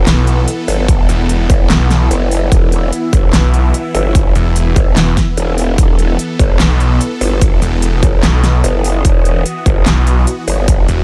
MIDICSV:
0, 0, Header, 1, 6, 480
1, 0, Start_track
1, 0, Key_signature, 1, "minor"
1, 0, Tempo, 408163
1, 1041, Time_signature, 4, 2, 24, 8
1, 12982, End_track
2, 0, Start_track
2, 0, Title_t, "Ambient pad"
2, 0, Program_c, 0, 92
2, 0, Note_on_c, 0, 64, 89
2, 0, Note_on_c, 0, 71, 88
2, 0, Note_on_c, 0, 78, 90
2, 0, Note_on_c, 0, 83, 76
2, 369, Note_on_c, 0, 88, 78
2, 394, Note_off_c, 0, 83, 0
2, 8048, Note_on_c, 0, 87, 74
2, 8075, Note_off_c, 0, 88, 0
2, 12982, Note_off_c, 0, 64, 0
2, 12982, Note_off_c, 0, 71, 0
2, 12982, Note_off_c, 0, 78, 0
2, 12982, Note_off_c, 0, 87, 0
2, 12982, End_track
3, 0, Start_track
3, 0, Title_t, "Supersaw synth"
3, 0, Program_c, 1, 81
3, 0, Note_on_c, 1, 52, 78
3, 0, Note_on_c, 1, 59, 69
3, 0, Note_on_c, 1, 69, 88
3, 2947, Note_off_c, 1, 69, 0
3, 2961, Note_on_c, 1, 64, 83
3, 6787, Note_off_c, 1, 64, 0
3, 6800, Note_on_c, 1, 69, 85
3, 10627, Note_off_c, 1, 69, 0
3, 10640, Note_on_c, 1, 66, 85
3, 12982, Note_off_c, 1, 52, 0
3, 12982, Note_off_c, 1, 59, 0
3, 12982, Note_off_c, 1, 66, 0
3, 12982, End_track
4, 0, Start_track
4, 0, Title_t, "Detuned saw bass"
4, 0, Program_c, 2, 39
4, 80, Note_on_c, 2, 35, 97
4, 542, Note_off_c, 2, 35, 0
4, 1281, Note_on_c, 2, 28, 100
4, 1742, Note_off_c, 2, 28, 0
4, 2001, Note_on_c, 2, 35, 96
4, 2462, Note_off_c, 2, 35, 0
4, 3920, Note_on_c, 2, 35, 97
4, 4382, Note_off_c, 2, 35, 0
4, 5120, Note_on_c, 2, 28, 102
4, 5582, Note_off_c, 2, 28, 0
4, 5841, Note_on_c, 2, 28, 99
4, 6063, Note_off_c, 2, 28, 0
4, 7761, Note_on_c, 2, 35, 101
4, 8222, Note_off_c, 2, 35, 0
4, 8960, Note_on_c, 2, 28, 98
4, 9422, Note_off_c, 2, 28, 0
4, 9680, Note_on_c, 2, 35, 96
4, 10142, Note_off_c, 2, 35, 0
4, 11600, Note_on_c, 2, 35, 99
4, 12062, Note_off_c, 2, 35, 0
4, 12801, Note_on_c, 2, 28, 101
4, 12982, Note_off_c, 2, 28, 0
4, 12982, End_track
5, 0, Start_track
5, 0, Title_t, "Wobble bass"
5, 0, Program_c, 3, 39
5, 801, Note_on_c, 3, 31, 94
5, 1262, Note_off_c, 3, 31, 0
5, 1760, Note_on_c, 3, 31, 100
5, 1982, Note_off_c, 3, 31, 0
5, 2481, Note_on_c, 3, 30, 97
5, 2942, Note_off_c, 3, 30, 0
5, 2960, Note_on_c, 3, 28, 100
5, 3422, Note_off_c, 3, 28, 0
5, 3680, Note_on_c, 3, 31, 99
5, 3902, Note_off_c, 3, 31, 0
5, 4640, Note_on_c, 3, 31, 96
5, 5102, Note_off_c, 3, 31, 0
5, 5600, Note_on_c, 3, 31, 101
5, 5822, Note_off_c, 3, 31, 0
5, 6320, Note_on_c, 3, 28, 100
5, 6782, Note_off_c, 3, 28, 0
5, 6800, Note_on_c, 3, 28, 103
5, 7262, Note_off_c, 3, 28, 0
5, 7520, Note_on_c, 3, 31, 93
5, 7742, Note_off_c, 3, 31, 0
5, 8480, Note_on_c, 3, 31, 95
5, 8942, Note_off_c, 3, 31, 0
5, 9440, Note_on_c, 3, 31, 98
5, 9662, Note_off_c, 3, 31, 0
5, 10160, Note_on_c, 3, 30, 98
5, 10622, Note_off_c, 3, 30, 0
5, 10640, Note_on_c, 3, 28, 102
5, 11102, Note_off_c, 3, 28, 0
5, 11360, Note_on_c, 3, 31, 95
5, 11582, Note_off_c, 3, 31, 0
5, 12321, Note_on_c, 3, 31, 99
5, 12782, Note_off_c, 3, 31, 0
5, 12982, End_track
6, 0, Start_track
6, 0, Title_t, "Drums"
6, 81, Note_on_c, 9, 38, 123
6, 81, Note_on_c, 9, 39, 97
6, 81, Note_on_c, 9, 42, 81
6, 198, Note_off_c, 9, 38, 0
6, 198, Note_off_c, 9, 39, 0
6, 198, Note_off_c, 9, 42, 0
6, 320, Note_on_c, 9, 42, 53
6, 438, Note_off_c, 9, 42, 0
6, 561, Note_on_c, 9, 42, 89
6, 678, Note_off_c, 9, 42, 0
6, 801, Note_on_c, 9, 46, 98
6, 918, Note_off_c, 9, 46, 0
6, 1040, Note_on_c, 9, 36, 125
6, 1041, Note_on_c, 9, 42, 80
6, 1158, Note_off_c, 9, 36, 0
6, 1158, Note_off_c, 9, 42, 0
6, 1281, Note_on_c, 9, 42, 55
6, 1399, Note_off_c, 9, 42, 0
6, 1521, Note_on_c, 9, 42, 83
6, 1639, Note_off_c, 9, 42, 0
6, 1760, Note_on_c, 9, 36, 114
6, 1761, Note_on_c, 9, 42, 56
6, 1878, Note_off_c, 9, 36, 0
6, 1879, Note_off_c, 9, 42, 0
6, 2001, Note_on_c, 9, 38, 122
6, 2001, Note_on_c, 9, 39, 98
6, 2001, Note_on_c, 9, 42, 82
6, 2119, Note_off_c, 9, 38, 0
6, 2119, Note_off_c, 9, 39, 0
6, 2119, Note_off_c, 9, 42, 0
6, 2241, Note_on_c, 9, 38, 61
6, 2241, Note_on_c, 9, 42, 52
6, 2358, Note_off_c, 9, 38, 0
6, 2358, Note_off_c, 9, 42, 0
6, 2481, Note_on_c, 9, 42, 83
6, 2598, Note_off_c, 9, 42, 0
6, 2721, Note_on_c, 9, 46, 92
6, 2838, Note_off_c, 9, 46, 0
6, 2960, Note_on_c, 9, 36, 127
6, 2961, Note_on_c, 9, 42, 78
6, 3077, Note_off_c, 9, 36, 0
6, 3078, Note_off_c, 9, 42, 0
6, 3201, Note_on_c, 9, 42, 51
6, 3318, Note_off_c, 9, 42, 0
6, 3440, Note_on_c, 9, 42, 80
6, 3558, Note_off_c, 9, 42, 0
6, 3680, Note_on_c, 9, 36, 113
6, 3680, Note_on_c, 9, 42, 54
6, 3797, Note_off_c, 9, 36, 0
6, 3798, Note_off_c, 9, 42, 0
6, 3920, Note_on_c, 9, 38, 127
6, 3920, Note_on_c, 9, 39, 91
6, 3920, Note_on_c, 9, 42, 78
6, 4038, Note_off_c, 9, 38, 0
6, 4038, Note_off_c, 9, 39, 0
6, 4038, Note_off_c, 9, 42, 0
6, 4160, Note_on_c, 9, 42, 52
6, 4278, Note_off_c, 9, 42, 0
6, 4401, Note_on_c, 9, 42, 83
6, 4518, Note_off_c, 9, 42, 0
6, 4641, Note_on_c, 9, 46, 92
6, 4758, Note_off_c, 9, 46, 0
6, 4880, Note_on_c, 9, 36, 122
6, 4881, Note_on_c, 9, 42, 73
6, 4998, Note_off_c, 9, 36, 0
6, 4998, Note_off_c, 9, 42, 0
6, 5121, Note_on_c, 9, 42, 50
6, 5238, Note_off_c, 9, 42, 0
6, 5360, Note_on_c, 9, 42, 76
6, 5478, Note_off_c, 9, 42, 0
6, 5600, Note_on_c, 9, 36, 108
6, 5601, Note_on_c, 9, 42, 52
6, 5718, Note_off_c, 9, 36, 0
6, 5718, Note_off_c, 9, 42, 0
6, 5840, Note_on_c, 9, 38, 124
6, 5840, Note_on_c, 9, 39, 87
6, 5840, Note_on_c, 9, 42, 76
6, 5958, Note_off_c, 9, 38, 0
6, 5958, Note_off_c, 9, 39, 0
6, 5958, Note_off_c, 9, 42, 0
6, 6080, Note_on_c, 9, 36, 64
6, 6081, Note_on_c, 9, 38, 61
6, 6081, Note_on_c, 9, 42, 48
6, 6198, Note_off_c, 9, 36, 0
6, 6198, Note_off_c, 9, 38, 0
6, 6198, Note_off_c, 9, 42, 0
6, 6320, Note_on_c, 9, 42, 81
6, 6438, Note_off_c, 9, 42, 0
6, 6560, Note_on_c, 9, 46, 94
6, 6678, Note_off_c, 9, 46, 0
6, 6800, Note_on_c, 9, 36, 117
6, 6800, Note_on_c, 9, 42, 78
6, 6917, Note_off_c, 9, 36, 0
6, 6918, Note_off_c, 9, 42, 0
6, 7040, Note_on_c, 9, 42, 51
6, 7158, Note_off_c, 9, 42, 0
6, 7280, Note_on_c, 9, 42, 79
6, 7398, Note_off_c, 9, 42, 0
6, 7520, Note_on_c, 9, 36, 106
6, 7520, Note_on_c, 9, 42, 52
6, 7637, Note_off_c, 9, 36, 0
6, 7638, Note_off_c, 9, 42, 0
6, 7760, Note_on_c, 9, 38, 123
6, 7760, Note_on_c, 9, 39, 88
6, 7760, Note_on_c, 9, 42, 77
6, 7878, Note_off_c, 9, 38, 0
6, 7878, Note_off_c, 9, 39, 0
6, 7878, Note_off_c, 9, 42, 0
6, 8000, Note_on_c, 9, 42, 50
6, 8118, Note_off_c, 9, 42, 0
6, 8240, Note_on_c, 9, 42, 81
6, 8358, Note_off_c, 9, 42, 0
6, 8480, Note_on_c, 9, 46, 96
6, 8598, Note_off_c, 9, 46, 0
6, 8720, Note_on_c, 9, 36, 116
6, 8720, Note_on_c, 9, 42, 78
6, 8837, Note_off_c, 9, 36, 0
6, 8838, Note_off_c, 9, 42, 0
6, 8961, Note_on_c, 9, 42, 53
6, 9078, Note_off_c, 9, 42, 0
6, 9200, Note_on_c, 9, 42, 84
6, 9318, Note_off_c, 9, 42, 0
6, 9440, Note_on_c, 9, 36, 103
6, 9440, Note_on_c, 9, 42, 55
6, 9557, Note_off_c, 9, 36, 0
6, 9558, Note_off_c, 9, 42, 0
6, 9681, Note_on_c, 9, 38, 114
6, 9681, Note_on_c, 9, 39, 89
6, 9681, Note_on_c, 9, 42, 80
6, 9798, Note_off_c, 9, 38, 0
6, 9798, Note_off_c, 9, 39, 0
6, 9798, Note_off_c, 9, 42, 0
6, 9920, Note_on_c, 9, 38, 56
6, 9920, Note_on_c, 9, 42, 53
6, 10038, Note_off_c, 9, 38, 0
6, 10038, Note_off_c, 9, 42, 0
6, 10160, Note_on_c, 9, 42, 82
6, 10278, Note_off_c, 9, 42, 0
6, 10400, Note_on_c, 9, 46, 104
6, 10518, Note_off_c, 9, 46, 0
6, 10640, Note_on_c, 9, 36, 109
6, 10640, Note_on_c, 9, 42, 82
6, 10757, Note_off_c, 9, 36, 0
6, 10758, Note_off_c, 9, 42, 0
6, 10880, Note_on_c, 9, 42, 57
6, 10998, Note_off_c, 9, 42, 0
6, 11120, Note_on_c, 9, 42, 86
6, 11238, Note_off_c, 9, 42, 0
6, 11360, Note_on_c, 9, 36, 101
6, 11360, Note_on_c, 9, 42, 57
6, 11477, Note_off_c, 9, 36, 0
6, 11478, Note_off_c, 9, 42, 0
6, 11600, Note_on_c, 9, 38, 117
6, 11600, Note_on_c, 9, 39, 88
6, 11600, Note_on_c, 9, 42, 83
6, 11718, Note_off_c, 9, 38, 0
6, 11718, Note_off_c, 9, 39, 0
6, 11718, Note_off_c, 9, 42, 0
6, 11840, Note_on_c, 9, 42, 54
6, 11958, Note_off_c, 9, 42, 0
6, 12080, Note_on_c, 9, 42, 86
6, 12197, Note_off_c, 9, 42, 0
6, 12320, Note_on_c, 9, 46, 105
6, 12438, Note_off_c, 9, 46, 0
6, 12560, Note_on_c, 9, 36, 116
6, 12560, Note_on_c, 9, 42, 86
6, 12677, Note_off_c, 9, 36, 0
6, 12677, Note_off_c, 9, 42, 0
6, 12800, Note_on_c, 9, 42, 55
6, 12918, Note_off_c, 9, 42, 0
6, 12982, End_track
0, 0, End_of_file